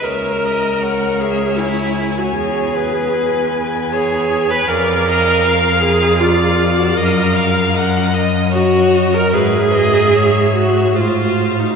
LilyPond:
<<
  \new Staff \with { instrumentName = "Violin" } { \time 3/4 \key cis \dorian \tempo 4 = 78 e''4 fis''8 e''8 gis''4~ | gis''4 gis''2 | \key ees \minor f''2 f''4~ | f''4 ees''4 ees''4 |
e''2 f''4 | }
  \new Staff \with { instrumentName = "Violin" } { \time 3/4 \key cis \dorian cis''8 dis''8 cis''2 | cis''8 b'4. cis''4 | \key ees \minor d''8 ees''8 f''4 d''4 | ees''8 f''8 ges''8 ees''8 des''4 |
b'8 ees''8 des''4 c''4 | }
  \new Staff \with { instrumentName = "Viola" } { \time 3/4 \key cis \dorian ais'4. gis'8 e'8. fis'16 | gis'4. r8 gis'8. b'16 | \key ees \minor bes'4. aes'8 f'8. ges'16 | bes'4. r8 ges'8. bes'16 |
gis'4. ges'8 f'8. ees'16 | }
  \new Staff \with { instrumentName = "Cello" } { \clef bass \time 3/4 \key cis \dorian cis,2. | e,2. | \key ees \minor f,2. | ges,2. |
gis,2 a,4 | }
>>